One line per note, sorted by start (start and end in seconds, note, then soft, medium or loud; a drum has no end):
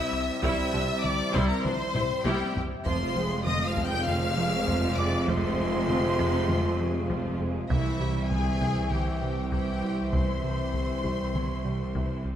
0.00 2.67 C3 medium
0.00 0.11 G3 loud
0.00 2.67 G3 loud
0.00 2.86 G3 loud
0.00 2.69 C4 loud
0.00 2.82 C4 loud
0.00 0.11 E4 loud
0.00 2.69 E4 medium
0.00 2.82 C5 loud
0.00 0.41 E5 loud
0.00 2.86 E5 loud
0.00 0.41 E6 loud
0.13 0.31 C2 medium
0.13 taiko rim medium
0.43 0.52 C2 loud
0.43 0.62 C2 loud
0.43 0.52 C2 loud
0.43 0.61 C3 loud
0.43 0.71 G3 loud
0.43 0.71 E4 loud
0.43 1.02 E5 loud
0.43 1.02 E6 loud
0.43 taiko loud
0.73 0.82 C2 medium
0.73 0.83 C2 medium
0.73 0.92 C3 medium
0.73 0.81 F3 medium
0.73 0.92 G3 medium
0.73 0.81 D4 medium
1.04 1.22 C2 medium
1.04 1.34 D5 loud
1.04 1.34 D6 loud
1.04 taiko mid medium
1.33 1.42 C2 loud
1.33 1.53 C2 loud
1.33 1.43 C2 loud
1.33 1.52 C3 loud
1.33 1.62 G3 loud
1.33 1.62 E4 loud
1.33 1.49 C5 loud
1.33 1.49 C6 loud
1.33 taiko medium
1.49 1.65 A#4 loud
1.49 1.64 A#5 loud
1.64 1.72 C2 medium
1.64 1.83 C2 medium
1.64 1.73 C2 medium
1.64 1.83 E3 medium
1.64 1.73 F3 medium
1.64 1.73 D4 medium
1.64 2.25 C5 loud
1.64 2.24 C6 loud
1.64 taiko mid medium
1.94 2.03 C2 medium
1.94 2.13 C3 medium
1.94 2.03 G3 medium
1.94 2.13 G3 medium
1.94 2.02 E4 loud
1.94 taiko low-mid loud
2.25 2.33 C2 loud
2.25 2.43 C2 loud
2.25 2.34 C2 loud
2.25 2.44 C3 loud
2.25 2.53 G3 loud
2.25 2.53 E4 loud
2.25 2.55 G4 loud
2.25 2.55 G5 loud
2.25 taiko high loud
2.56 2.74 C2 medium
2.56 taiko low loud
2.84 7.67 F1 loud
2.84 7.66 F2 loud
2.84 3.04 F2 loud
2.84 7.66 C3 loud
2.84 3.14 F3 loud
2.84 3.04 F3 loud
2.84 7.70 G#3 loud
2.84 7.66 G#3 loud
2.84 7.66 C4 loud
2.84 7.67 C4 loud
2.84 7.67 F4 loud
2.84 3.14 F4 loud
2.84 7.66 C5 loud
2.84 3.42 C5 loud
2.84 7.70 F5 loud
2.84 3.42 C6 loud
2.84 taiko loud
3.16 3.34 F3 medium
3.16 3.46 G#3 medium
3.16 3.35 C4 medium
3.16 3.46 G#4 medium
3.45 3.64 F2 medium
3.45 3.77 F3 medium
3.45 3.77 F4 medium
3.45 3.66 D#5 loud
3.45 3.66 D#6 loud
3.45 taiko mid medium
3.66 3.86 F5 loud
3.66 3.87 F6 loud
3.76 3.95 F2 loud
3.76 3.95 F3 loud
3.76 4.07 G#3 medium
3.76 4.07 G#4 medium
3.76 taiko medium
3.86 4.06 G5 loud
3.86 4.07 G6 loud
4.06 4.25 F2 medium
4.06 4.35 F3 medium
4.06 4.25 G#3 medium
4.06 4.35 F4 medium
4.06 4.96 F5 loud
4.06 4.98 F6 loud
4.06 taiko mid medium
4.37 4.56 F3 medium
4.37 4.67 G#3 medium
4.37 4.56 C4 medium
4.37 4.68 G#4 medium
4.67 4.86 F2 loud
4.67 4.86 F3 loud
4.67 4.98 F3 medium
4.67 4.98 F4 medium
4.67 taiko medium
4.97 5.16 F2 medium
4.97 5.28 G#3 medium
4.97 5.29 G#4 medium
4.97 5.27 D5 loud
4.97 5.28 D6 loud
5.28 5.46 F2 loud
5.28 5.46 F3 loud
5.28 5.57 F3 medium
5.28 5.57 F4 medium
5.28 7.41 C5 medium
5.28 7.40 C6 loud
5.28 taiko loud
5.58 5.77 F3 medium
5.58 5.89 G#3 medium
5.58 5.77 C4 medium
5.58 5.89 G#4 medium
5.89 6.07 F2 medium
5.89 6.19 F3 medium
5.89 6.19 F4 medium
5.89 taiko mid medium
6.19 6.38 F2 loud
6.19 6.37 F3 loud
6.19 6.49 G#3 medium
6.19 6.49 G#4 medium
6.19 taiko medium
6.49 6.68 F2 medium
6.49 6.78 F3 medium
6.49 6.67 G#3 medium
6.49 6.78 F4 medium
6.49 taiko mid medium
6.79 6.98 F3 medium
6.79 7.10 G#3 medium
6.79 6.98 C4 medium
6.79 7.10 G#4 medium
7.10 7.29 F2 loud
7.10 7.28 F3 loud
7.10 7.40 F3 medium
7.10 7.41 F4 medium
7.10 taiko medium
7.40 7.59 F2 medium
7.40 7.71 G#3 medium
7.40 7.71 G#4 medium
7.70 12.32 C2 medium
7.70 7.89 C2 loud
7.70 12.32 C2 medium
7.70 7.88 C3 loud
7.70 12.21 C3 loud
7.70 12.21 E3 medium
7.70 7.99 E3 medium
7.70 12.36 E3 medium
7.70 12.36 C4 loud
7.70 12.21 C4 loud
7.70 12.21 E4 loud
7.70 8.27 E4 medium
7.70 7.99 E4 medium
7.70 12.36 C5 medium
7.70 8.27 E5 loud
7.70 12.36 E5 medium
7.70 taiko loud
8.00 8.19 C3 medium
8.00 8.19 G3 medium
8.00 8.31 G3 medium
8.00 8.31 G4 medium
8.31 8.50 C2 medium
8.31 8.60 E3 medium
8.31 8.60 E4 medium
8.31 8.91 G#4 loud
8.31 8.92 G#5 loud
8.31 taiko mid medium
8.61 8.80 C2 loud
8.61 8.79 C3 loud
8.61 8.90 E3 medium
8.61 8.90 E4 medium
8.61 taiko medium
8.91 9.10 C2 medium
8.91 9.10 E3 medium
8.91 9.20 E3 medium
8.91 9.20 E4 medium
8.91 9.52 G4 medium
8.91 9.50 G5 medium
8.91 taiko mid medium
9.22 9.41 C3 medium
9.22 9.40 G3 medium
9.22 9.53 G3 medium
9.22 9.53 G4 medium
9.52 9.71 C2 loud
9.52 9.70 C3 loud
9.52 9.83 E3 medium
9.52 9.83 E4 medium
9.52 10.12 G4 medium
9.52 10.11 G5 loud
9.52 taiko medium
9.83 10.01 C2 medium
9.83 10.13 G3 medium
9.83 10.13 G4 medium
10.12 10.32 C2 loud
10.12 10.31 C3 loud
10.12 10.41 E3 medium
10.12 10.41 E4 medium
10.12 12.25 C5 medium
10.12 12.21 C6 loud
10.12 taiko loud
10.43 10.62 C3 medium
10.43 10.62 G3 medium
10.43 10.74 G3 medium
10.43 10.74 G4 medium
10.73 10.92 C2 medium
10.73 11.04 E3 medium
10.73 11.03 E4 medium
10.73 taiko mid medium
11.04 11.22 C2 loud
11.04 11.22 C3 loud
11.04 11.34 G3 medium
11.04 11.34 G4 medium
11.04 taiko medium
11.34 11.52 C2 medium
11.34 11.52 E3 medium
11.34 11.62 E3 medium
11.34 11.63 E4 medium
11.34 taiko mid medium
11.65 11.83 C3 medium
11.65 11.83 G3 medium
11.65 11.95 G3 medium
11.65 11.95 G4 medium
11.95 12.13 C2 medium
11.95 12.13 C3 loud
11.95 12.25 E3 medium
11.95 12.25 E4 medium
11.95 taiko medium
12.25 12.36 C2 medium
12.25 12.36 G3 medium
12.25 12.36 G4 soft